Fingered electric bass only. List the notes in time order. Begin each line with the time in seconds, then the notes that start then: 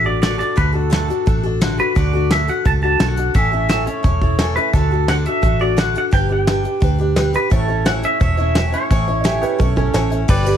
Already playing: A1
0.58 D2
1.27 A1
1.96 D2
2.66 C#2
3.00 B1
3.35 A1
4.04 E1
4.74 D2
5.43 A1
6.13 G1
6.82 D2
7.52 A1
8.21 E1
8.91 A1
9.60 B1
9.94 A1
10.29 G1